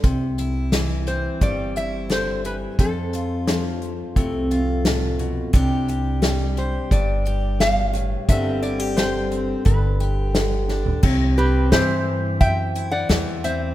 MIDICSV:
0, 0, Header, 1, 6, 480
1, 0, Start_track
1, 0, Key_signature, 0, "major"
1, 0, Tempo, 687285
1, 27, Time_signature, 4, 2, 24, 8
1, 9600, End_track
2, 0, Start_track
2, 0, Title_t, "Pedal steel guitar"
2, 0, Program_c, 0, 26
2, 8197, Note_on_c, 0, 76, 68
2, 9600, Note_off_c, 0, 76, 0
2, 9600, End_track
3, 0, Start_track
3, 0, Title_t, "Resonator guitar played with a steel bar"
3, 0, Program_c, 1, 25
3, 751, Note_on_c, 1, 72, 78
3, 995, Note_on_c, 1, 74, 90
3, 996, Note_off_c, 1, 72, 0
3, 1233, Note_off_c, 1, 74, 0
3, 1235, Note_on_c, 1, 76, 89
3, 1479, Note_off_c, 1, 76, 0
3, 1480, Note_on_c, 1, 72, 83
3, 1698, Note_off_c, 1, 72, 0
3, 1717, Note_on_c, 1, 71, 71
3, 1780, Note_off_c, 1, 71, 0
3, 1955, Note_on_c, 1, 69, 70
3, 2644, Note_off_c, 1, 69, 0
3, 4598, Note_on_c, 1, 72, 75
3, 4830, Note_off_c, 1, 72, 0
3, 4833, Note_on_c, 1, 74, 88
3, 5310, Note_off_c, 1, 74, 0
3, 5313, Note_on_c, 1, 77, 97
3, 5790, Note_off_c, 1, 77, 0
3, 5793, Note_on_c, 1, 76, 86
3, 6021, Note_off_c, 1, 76, 0
3, 6023, Note_on_c, 1, 74, 82
3, 6261, Note_on_c, 1, 72, 75
3, 6274, Note_off_c, 1, 74, 0
3, 6740, Note_off_c, 1, 72, 0
3, 6743, Note_on_c, 1, 71, 72
3, 7232, Note_off_c, 1, 71, 0
3, 7232, Note_on_c, 1, 69, 72
3, 7438, Note_off_c, 1, 69, 0
3, 7945, Note_on_c, 1, 67, 66
3, 7947, Note_on_c, 1, 71, 83
3, 8170, Note_off_c, 1, 67, 0
3, 8181, Note_off_c, 1, 71, 0
3, 8183, Note_on_c, 1, 67, 70
3, 8184, Note_on_c, 1, 72, 89
3, 8638, Note_off_c, 1, 67, 0
3, 8662, Note_off_c, 1, 72, 0
3, 8664, Note_on_c, 1, 76, 87
3, 8664, Note_on_c, 1, 79, 102
3, 9002, Note_off_c, 1, 76, 0
3, 9017, Note_off_c, 1, 79, 0
3, 9020, Note_on_c, 1, 78, 98
3, 9025, Note_on_c, 1, 74, 77
3, 9361, Note_off_c, 1, 74, 0
3, 9387, Note_on_c, 1, 72, 68
3, 9387, Note_on_c, 1, 76, 90
3, 9395, Note_off_c, 1, 78, 0
3, 9600, Note_off_c, 1, 72, 0
3, 9600, Note_off_c, 1, 76, 0
3, 9600, End_track
4, 0, Start_track
4, 0, Title_t, "Steel-string acoustic guitar"
4, 0, Program_c, 2, 25
4, 0, Note_on_c, 2, 55, 51
4, 27, Note_on_c, 2, 48, 66
4, 271, Note_on_c, 2, 64, 61
4, 508, Note_off_c, 2, 48, 0
4, 508, Note_on_c, 2, 52, 54
4, 755, Note_on_c, 2, 60, 49
4, 986, Note_off_c, 2, 55, 0
4, 991, Note_on_c, 2, 43, 58
4, 995, Note_on_c, 2, 55, 56
4, 1230, Note_off_c, 2, 64, 0
4, 1240, Note_on_c, 2, 64, 60
4, 1461, Note_off_c, 2, 52, 0
4, 1464, Note_on_c, 2, 50, 55
4, 1706, Note_off_c, 2, 50, 0
4, 1711, Note_on_c, 2, 52, 56
4, 1921, Note_off_c, 2, 43, 0
4, 1950, Note_off_c, 2, 52, 0
4, 1950, Note_on_c, 2, 41, 67
4, 1951, Note_off_c, 2, 55, 0
4, 1954, Note_off_c, 2, 64, 0
4, 2198, Note_on_c, 2, 65, 62
4, 2434, Note_on_c, 2, 53, 56
4, 2910, Note_on_c, 2, 48, 62
4, 2915, Note_on_c, 2, 57, 51
4, 3144, Note_off_c, 2, 65, 0
4, 3153, Note_on_c, 2, 65, 63
4, 3199, Note_off_c, 2, 60, 0
4, 3384, Note_off_c, 2, 48, 0
4, 3387, Note_on_c, 2, 45, 60
4, 3624, Note_off_c, 2, 45, 0
4, 3627, Note_on_c, 2, 47, 56
4, 3840, Note_off_c, 2, 41, 0
4, 3841, Note_off_c, 2, 65, 0
4, 3842, Note_off_c, 2, 53, 0
4, 3843, Note_off_c, 2, 57, 0
4, 3860, Note_off_c, 2, 47, 0
4, 3863, Note_on_c, 2, 48, 72
4, 3869, Note_on_c, 2, 55, 57
4, 3875, Note_on_c, 2, 62, 59
4, 3878, Note_on_c, 2, 67, 62
4, 4113, Note_off_c, 2, 67, 0
4, 4116, Note_on_c, 2, 67, 64
4, 4341, Note_off_c, 2, 55, 0
4, 4344, Note_on_c, 2, 55, 59
4, 4589, Note_off_c, 2, 67, 0
4, 4592, Note_on_c, 2, 67, 54
4, 4826, Note_off_c, 2, 48, 0
4, 4834, Note_on_c, 2, 43, 58
4, 4835, Note_off_c, 2, 62, 0
4, 4838, Note_on_c, 2, 62, 58
4, 5072, Note_off_c, 2, 67, 0
4, 5075, Note_on_c, 2, 67, 63
4, 5311, Note_on_c, 2, 47, 58
4, 5539, Note_off_c, 2, 47, 0
4, 5541, Note_on_c, 2, 45, 55
4, 5763, Note_off_c, 2, 43, 0
4, 5765, Note_off_c, 2, 62, 0
4, 5785, Note_off_c, 2, 45, 0
4, 5789, Note_on_c, 2, 43, 72
4, 5793, Note_on_c, 2, 50, 60
4, 5796, Note_off_c, 2, 55, 0
4, 5798, Note_on_c, 2, 55, 59
4, 5803, Note_on_c, 2, 60, 59
4, 5806, Note_off_c, 2, 67, 0
4, 5809, Note_on_c, 2, 67, 65
4, 6022, Note_off_c, 2, 67, 0
4, 6025, Note_on_c, 2, 64, 59
4, 6143, Note_off_c, 2, 64, 0
4, 6143, Note_on_c, 2, 67, 53
4, 6258, Note_off_c, 2, 50, 0
4, 6266, Note_on_c, 2, 50, 57
4, 6498, Note_off_c, 2, 60, 0
4, 6507, Note_on_c, 2, 60, 48
4, 6719, Note_off_c, 2, 60, 0
4, 6720, Note_off_c, 2, 43, 0
4, 6740, Note_on_c, 2, 43, 68
4, 6746, Note_off_c, 2, 67, 0
4, 6986, Note_on_c, 2, 67, 60
4, 7219, Note_off_c, 2, 50, 0
4, 7227, Note_on_c, 2, 50, 56
4, 7469, Note_on_c, 2, 62, 51
4, 7676, Note_off_c, 2, 43, 0
4, 7679, Note_off_c, 2, 67, 0
4, 7680, Note_off_c, 2, 62, 0
4, 7702, Note_on_c, 2, 48, 77
4, 7708, Note_off_c, 2, 50, 0
4, 7953, Note_on_c, 2, 60, 60
4, 8186, Note_off_c, 2, 48, 0
4, 8186, Note_on_c, 2, 52, 62
4, 8674, Note_off_c, 2, 55, 0
4, 8911, Note_on_c, 2, 64, 68
4, 9135, Note_off_c, 2, 52, 0
4, 9144, Note_on_c, 2, 52, 65
4, 9380, Note_off_c, 2, 60, 0
4, 9388, Note_on_c, 2, 60, 57
4, 9597, Note_off_c, 2, 52, 0
4, 9600, Note_off_c, 2, 60, 0
4, 9600, Note_off_c, 2, 64, 0
4, 9600, End_track
5, 0, Start_track
5, 0, Title_t, "Upright bass"
5, 0, Program_c, 3, 32
5, 25, Note_on_c, 3, 36, 84
5, 884, Note_off_c, 3, 36, 0
5, 986, Note_on_c, 3, 31, 71
5, 1844, Note_off_c, 3, 31, 0
5, 1946, Note_on_c, 3, 41, 84
5, 2804, Note_off_c, 3, 41, 0
5, 2906, Note_on_c, 3, 36, 75
5, 3764, Note_off_c, 3, 36, 0
5, 3866, Note_on_c, 3, 36, 86
5, 4724, Note_off_c, 3, 36, 0
5, 4829, Note_on_c, 3, 31, 73
5, 5686, Note_off_c, 3, 31, 0
5, 5788, Note_on_c, 3, 31, 82
5, 6646, Note_off_c, 3, 31, 0
5, 6747, Note_on_c, 3, 31, 79
5, 7605, Note_off_c, 3, 31, 0
5, 7706, Note_on_c, 3, 36, 86
5, 8173, Note_off_c, 3, 36, 0
5, 8182, Note_on_c, 3, 43, 86
5, 8651, Note_off_c, 3, 43, 0
5, 8666, Note_on_c, 3, 42, 83
5, 9133, Note_off_c, 3, 42, 0
5, 9144, Note_on_c, 3, 40, 96
5, 9600, Note_off_c, 3, 40, 0
5, 9600, End_track
6, 0, Start_track
6, 0, Title_t, "Drums"
6, 25, Note_on_c, 9, 42, 70
6, 27, Note_on_c, 9, 36, 97
6, 94, Note_off_c, 9, 42, 0
6, 96, Note_off_c, 9, 36, 0
6, 266, Note_on_c, 9, 42, 55
6, 336, Note_off_c, 9, 42, 0
6, 503, Note_on_c, 9, 38, 91
6, 503, Note_on_c, 9, 42, 75
6, 573, Note_off_c, 9, 38, 0
6, 573, Note_off_c, 9, 42, 0
6, 746, Note_on_c, 9, 42, 52
6, 816, Note_off_c, 9, 42, 0
6, 986, Note_on_c, 9, 42, 72
6, 987, Note_on_c, 9, 36, 94
6, 1056, Note_off_c, 9, 42, 0
6, 1057, Note_off_c, 9, 36, 0
6, 1229, Note_on_c, 9, 42, 59
6, 1299, Note_off_c, 9, 42, 0
6, 1468, Note_on_c, 9, 38, 90
6, 1468, Note_on_c, 9, 42, 72
6, 1538, Note_off_c, 9, 38, 0
6, 1538, Note_off_c, 9, 42, 0
6, 1708, Note_on_c, 9, 42, 59
6, 1778, Note_off_c, 9, 42, 0
6, 1947, Note_on_c, 9, 36, 96
6, 1947, Note_on_c, 9, 42, 75
6, 2017, Note_off_c, 9, 36, 0
6, 2017, Note_off_c, 9, 42, 0
6, 2187, Note_on_c, 9, 42, 55
6, 2257, Note_off_c, 9, 42, 0
6, 2427, Note_on_c, 9, 38, 90
6, 2427, Note_on_c, 9, 42, 69
6, 2496, Note_off_c, 9, 38, 0
6, 2496, Note_off_c, 9, 42, 0
6, 2666, Note_on_c, 9, 42, 51
6, 2736, Note_off_c, 9, 42, 0
6, 2907, Note_on_c, 9, 36, 96
6, 2908, Note_on_c, 9, 42, 69
6, 2977, Note_off_c, 9, 36, 0
6, 2978, Note_off_c, 9, 42, 0
6, 3149, Note_on_c, 9, 42, 53
6, 3219, Note_off_c, 9, 42, 0
6, 3388, Note_on_c, 9, 38, 96
6, 3388, Note_on_c, 9, 42, 72
6, 3457, Note_off_c, 9, 38, 0
6, 3457, Note_off_c, 9, 42, 0
6, 3629, Note_on_c, 9, 42, 54
6, 3699, Note_off_c, 9, 42, 0
6, 3867, Note_on_c, 9, 36, 100
6, 3869, Note_on_c, 9, 42, 71
6, 3937, Note_off_c, 9, 36, 0
6, 3939, Note_off_c, 9, 42, 0
6, 4108, Note_on_c, 9, 42, 54
6, 4178, Note_off_c, 9, 42, 0
6, 4347, Note_on_c, 9, 38, 99
6, 4347, Note_on_c, 9, 42, 71
6, 4417, Note_off_c, 9, 38, 0
6, 4417, Note_off_c, 9, 42, 0
6, 4588, Note_on_c, 9, 42, 54
6, 4658, Note_off_c, 9, 42, 0
6, 4827, Note_on_c, 9, 36, 92
6, 4828, Note_on_c, 9, 42, 73
6, 4897, Note_off_c, 9, 36, 0
6, 4898, Note_off_c, 9, 42, 0
6, 5066, Note_on_c, 9, 42, 55
6, 5136, Note_off_c, 9, 42, 0
6, 5309, Note_on_c, 9, 38, 93
6, 5309, Note_on_c, 9, 42, 76
6, 5379, Note_off_c, 9, 38, 0
6, 5379, Note_off_c, 9, 42, 0
6, 5549, Note_on_c, 9, 42, 61
6, 5619, Note_off_c, 9, 42, 0
6, 5787, Note_on_c, 9, 36, 99
6, 5787, Note_on_c, 9, 42, 84
6, 5857, Note_off_c, 9, 36, 0
6, 5857, Note_off_c, 9, 42, 0
6, 6029, Note_on_c, 9, 42, 58
6, 6099, Note_off_c, 9, 42, 0
6, 6269, Note_on_c, 9, 38, 90
6, 6269, Note_on_c, 9, 42, 74
6, 6338, Note_off_c, 9, 38, 0
6, 6338, Note_off_c, 9, 42, 0
6, 6507, Note_on_c, 9, 42, 53
6, 6577, Note_off_c, 9, 42, 0
6, 6745, Note_on_c, 9, 42, 70
6, 6746, Note_on_c, 9, 36, 97
6, 6815, Note_off_c, 9, 42, 0
6, 6816, Note_off_c, 9, 36, 0
6, 6987, Note_on_c, 9, 42, 58
6, 7057, Note_off_c, 9, 42, 0
6, 7226, Note_on_c, 9, 38, 93
6, 7226, Note_on_c, 9, 42, 70
6, 7295, Note_off_c, 9, 38, 0
6, 7295, Note_off_c, 9, 42, 0
6, 7465, Note_on_c, 9, 38, 51
6, 7534, Note_off_c, 9, 38, 0
6, 7585, Note_on_c, 9, 43, 72
6, 7655, Note_off_c, 9, 43, 0
6, 7705, Note_on_c, 9, 49, 100
6, 7706, Note_on_c, 9, 36, 102
6, 7775, Note_off_c, 9, 36, 0
6, 7775, Note_off_c, 9, 49, 0
6, 8185, Note_on_c, 9, 38, 105
6, 8185, Note_on_c, 9, 42, 55
6, 8255, Note_off_c, 9, 38, 0
6, 8255, Note_off_c, 9, 42, 0
6, 8666, Note_on_c, 9, 36, 99
6, 8666, Note_on_c, 9, 42, 58
6, 8736, Note_off_c, 9, 36, 0
6, 8736, Note_off_c, 9, 42, 0
6, 8907, Note_on_c, 9, 42, 60
6, 8977, Note_off_c, 9, 42, 0
6, 9146, Note_on_c, 9, 38, 108
6, 9146, Note_on_c, 9, 42, 64
6, 9216, Note_off_c, 9, 38, 0
6, 9216, Note_off_c, 9, 42, 0
6, 9387, Note_on_c, 9, 42, 64
6, 9457, Note_off_c, 9, 42, 0
6, 9600, End_track
0, 0, End_of_file